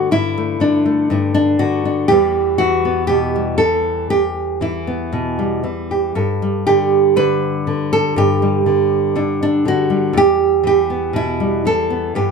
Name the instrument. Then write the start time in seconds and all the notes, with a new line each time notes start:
nylon-string guitar
Already playing: D3 F#4
0.11 G2 E4
0.38 A3
0.60 D3 D4
0.86 A3
1.10 G2 D4
1.34 D4
1.59 D3 F#4
1.85 D4
2.08 E2 E3 G3 G4
2.12 B3
2.58 E3 F#4
2.85 B3
3.07 B2 G4
3.36 G3
3.58 E3 A4
4.10 E2 G4
4.61 E3 E4
4.87 B3
5.13 B2
5.39 G3
5.63 E3
5.91 G4
6.15 G2 A4
6.42 G3
6.67 D3 G4
7.16 D3 B4
7.67 D3
7.93 A4
8.16 G2 G4
8.42 G3
8.66 D3
9.16 D3 D4
9.43 D4
9.65 D3 F#4
9.90 G3
10.13 E2
10.17 G4
10.63 E3 G4
10.90 B3
11.13 B2 E4
11.40 G3
11.65 E3 A4
11.90 B3
12.15 G2 G4